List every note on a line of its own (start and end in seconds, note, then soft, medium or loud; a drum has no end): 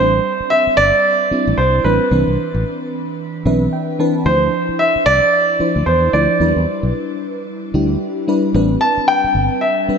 0.00 0.18 A1 loud
0.00 0.87 G3 medium
0.00 0.87 C4 medium
0.00 0.87 D4 medium
0.00 0.52 C5 medium
0.00 0.87 C5 medium
0.40 muted fingered electric bass stroke soft
0.50 0.75 E5 loud
0.67 muted fingered electric bass stroke soft
0.77 0.90 G1 medium
0.77 1.60 D5 loud
1.31 1.77 G3 medium
1.31 1.77 C4 medium
1.31 1.77 D4 medium
1.31 1.78 E4 medium
1.31 muted fingered electric bass stroke soft
1.47 1.56 A1 medium
1.58 1.79 C2 medium
1.58 1.83 C5 medium
1.84 1.97 A1 loud
1.84 2.08 G3 medium
1.84 2.08 C4 medium
1.84 2.08 D4 medium
1.84 2.61 B4 medium
1.84 2.08 B4 medium
2.11 2.24 C2 loud
2.11 3.01 E3 medium
2.11 3.01 C4 medium
2.11 3.01 D4 medium
2.11 3.02 B4 medium
2.28 2.36 C2 medium
2.54 2.63 A1 medium
3.45 3.66 B1 medium
3.45 3.91 E3 medium
3.45 3.92 C4 medium
3.45 3.92 D4 medium
3.45 3.92 B4 loud
3.45 3.71 E5 medium
3.73 3.97 G5 medium
3.99 4.22 E3 medium
3.99 4.22 C4 medium
3.99 4.22 D4 medium
3.99 4.23 B4 loud
3.99 4.24 A5 medium
4.26 4.47 D2 loud
4.26 5.15 F3 medium
4.26 5.15 D4 medium
4.26 5.16 E4 medium
4.26 4.76 C5 medium
4.26 5.16 C5 medium
4.69 muted fingered electric bass stroke soft
4.79 5.07 E5 loud
4.96 muted fingered electric bass stroke soft
5.06 5.19 C2 medium
5.06 5.82 D5 loud
5.59 6.06 F3 medium
5.59 6.06 D4 medium
5.59 6.06 E4 medium
5.59 6.06 C5 medium
5.59 muted fingered electric bass stroke soft
5.76 5.84 D2 medium
5.86 6.07 E2 medium
5.86 6.14 C5 medium
6.13 6.26 D2 medium
6.13 6.36 F3 medium
6.13 6.37 D4 medium
6.13 6.37 E4 medium
6.13 6.37 C5 medium
6.13 6.90 D5 medium
6.40 6.53 E2 medium
6.40 6.48 F#3 medium
6.40 7.30 D4 medium
6.40 7.30 E4 medium
6.40 7.30 B4 medium
6.46 7.33 G3 medium
6.56 6.65 E2 medium
6.83 6.91 B1 medium
7.74 7.95 D2 medium
7.74 8.20 G3 medium
7.74 8.20 D4 medium
7.74 8.20 E4 medium
7.74 8.21 G4 medium
8.28 8.51 G3 medium
8.28 8.51 D4 medium
8.28 8.51 E4 medium
8.28 8.51 B4 loud
8.54 8.75 A1 loud
8.54 9.44 G3 medium
8.54 9.44 C4 medium
8.54 9.44 D4 medium
8.54 9.44 B4 medium
8.81 9.09 A5 medium
8.97 muted fingered electric bass stroke soft
9.08 9.63 G5 loud
9.24 muted fingered electric bass stroke soft
9.35 9.47 G1 medium
9.61 9.98 E5 medium
9.88 9.98 G3 medium
9.88 9.98 C4 medium
9.88 9.98 D4 medium
9.88 9.98 B4 medium
9.88 muted fingered electric bass stroke medium